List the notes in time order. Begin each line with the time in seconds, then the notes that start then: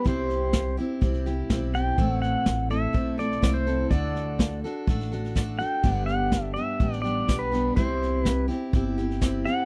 0.05 C2 C3 G3 C4 E4 G4, kick, snare
0.09 C5
0.29 snare
0.53 kick, snare, hi-hat pedal
0.77 C4 E4 G4, snare
1.01 C2 G3 C4 E4 G4, kick, snare
1.14 snare
1.26 C4 E4 G4, snare
1.50 B1 G3 C4 E4 G4, kick, snare, hi-hat pedal
1.74 C4 E4 G4 G5, snare
1.98 A1 A2 E3 A3 C4 E4 A4, kick, snare
2.22 F#5, snare
2.46 A1, kick, snare, hi-hat pedal
2.70 A3 C4 E4 A4 E5, snare
2.93 B1 A3 C4 E4 A4, kick, snare
3.17 A3 C4 E4 A4 D5, snare
3.31 snare
3.42 C2 A3 C4 E4 A4, kick, snare, hi-hat pedal
3.54 C5
3.67 A3 C4 E4 A4, snare
3.91 D2 D3 A3 D4 F#4 A4 D5, kick, snare
4.15 snare
4.39 kick, snare, hi-hat pedal
4.64 D4 F#4 A4, snare
4.87 A1 A3 D4 F#4 A4, kick, snare
5.01 snare
5.12 D4 F#4 A4, snare
5.24 snare
5.35 A3 D4 F#4 A4, kick, snare, hi-hat pedal
5.59 D4 F#4 A4 G5, snare
5.83 G1 G2 D3 G3 B3 D4 G4, kick, snare
5.93 F#5
6.06 F#5, snare
6.32 kick, snare, hi-hat pedal
6.54 B3 D4 G4 E5, snare
6.58 G3
6.80 A1 G3 B3 D4 G4, kick, snare
6.92 snare
7.02 G3 B3 D4 G4 D5, snare
7.28 B1 G3 B3 D4 G4, kick, snare, hi-hat pedal
7.39 B4
7.52 G3 B3 D4 G4, snare
7.76 C2 C3 G3 C4 E4 G4 C5, kick, snare
8.02 snare
8.24 B4, kick, snare, hi-hat pedal
8.48 C4 E4 G4, snare
8.73 G1 G3 C4 E4 G4, kick, snare
8.97 C4 E4 G4, snare
9.11 snare
9.21 G3 C4 E4 G4, kick, snare, hi-hat pedal
9.45 C4 E4 G4 F#5, snare